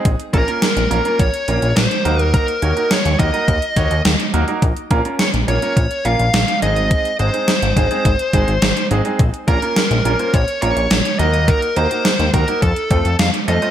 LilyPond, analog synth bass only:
\new Staff \with { instrumentName = "Analog synth bass" } { \clef bass \time 4/4 \key bes \minor \tempo 4 = 105 bes,,16 r16 bes,,16 r8 bes,,16 bes,,16 r16 bes,,16 r16 bes,,16 bes,,16 bes,,16 r16 ees,8~ | ees,16 r16 ees,16 r8 ees,16 ees,16 r16 ees,16 r16 ees,16 ees,16 ees,16 r16 ees,16 r16 | bes,,16 r16 bes,,16 r8 bes,,16 bes,,16 r16 bes,,16 r16 bes,,16 bes,,16 bes,,16 r16 aes,,8~ | aes,,16 r16 aes,,16 r8 aes,,16 aes,,16 r16 aes,,16 r16 aes,,16 aes,,16 aes,,16 r16 aes,,16 r16 |
bes,,16 r16 bes,,16 r8 bes,,16 bes,,16 r16 bes,,16 r16 bes,,16 bes,,16 bes,,16 r16 ees,8~ | ees,16 r16 ees,16 r8 ees,16 ees,16 r16 f,16 r16 f,16 f,16 f,16 r16 f,16 r16 | }